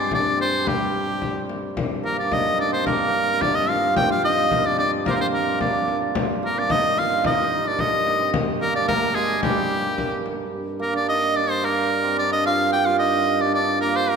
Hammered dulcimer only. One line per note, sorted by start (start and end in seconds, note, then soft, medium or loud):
0.00 0.37 C4 medium
0.00 0.11 D4 medium
0.00 1.56 F4 medium
0.11 2.16 D4 medium
0.37 2.72 C4 medium
0.64 3.74 G3 medium
2.04 2.86 A#3 medium
2.17 2.37 D4 medium
2.31 2.65 D#4 medium
2.59 3.40 D4 medium
2.72 5.18 C4 medium
2.86 5.05 A#3 medium
3.40 4.29 D4 medium
3.68 4.09 F4 medium
3.97 7.10 G4 medium
4.10 6.97 F4 medium
4.23 4.70 D#4 medium
4.64 4.77 D4 medium
4.78 5.59 D4 medium
5.05 5.12 A#3 medium
5.13 5.32 A#3 medium
5.19 8.19 C4 medium
5.33 6.42 A#3 medium
5.60 6.57 D4 medium
6.43 8.61 A#3 medium
6.57 6.76 D4 medium
6.70 7.24 D#4 medium
6.97 10.34 F4 medium
7.25 7.71 D#4 medium
7.64 7.85 D4 medium
7.79 8.80 D#4 medium
8.20 12.03 C4 medium
8.61 8.88 A#3 medium
8.74 10.93 D4 medium
8.88 10.79 A#3 medium
9.15 9.50 G#3 medium
9.44 12.52 G3 medium
10.79 11.62 A#3 medium
10.94 11.15 D4 medium
11.09 11.42 D#4 medium
11.36 12.17 D4 medium
11.62 13.82 A#3 medium
12.03 14.16 C4 medium
12.17 13.05 D4 medium
12.46 12.85 F4 medium
12.73 14.16 G4 medium
12.86 14.16 F4 medium
12.99 13.46 D#4 medium
13.40 13.53 D4 medium
13.54 14.16 D4 medium
13.82 14.08 A#3 medium
14.09 14.16 A#3 medium